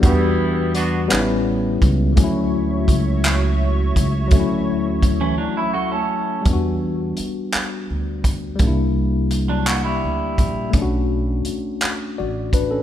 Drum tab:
HH |x-xx-x|x-xx-x|x-x---|x-xx-x|
CP |---x--|---x--|------|---x--|
BD |o----o|o-o--o|o-o---|o----o|

HH |x-xx-x|x-xx-x|
CP |---x--|---x--|
BD |o----o|o----o|